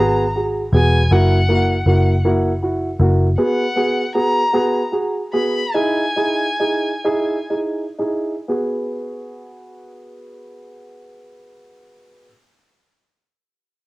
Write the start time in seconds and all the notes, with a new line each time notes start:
Already playing: G#1 B3 F#4 A#5
0.00 G#4
0.36 F#4 G#4
0.73 E1 B3 F#4 G#4 G#5
1.11 F#1 A#3 E4 F#4 F#5
1.49 A#3 E4 F#4
1.86 F#1 A#3 E4 F#4
2.25 A#3 E4 F#4
2.63 E4 F#4
3.00 F#1 A#3 E4 F#4
3.38 B3 F#4 G#4 F#5
3.75 B3 F#4 G#4
4.15 B3 F#4 G#4 A#5
4.53 B3 F#4 G#4
4.92 F#4 G#4
5.33 B3 F#4 G#4 B5
5.74 D#4 E4 G#4 G#5
6.16 D#4 E4 G#4
6.60 D#4 E4 G#4
7.05 D#4 E4 G#4
7.50 D#4 E4 G#4
7.99 D#4 E4 G#4
8.48 B3 F#4 G#4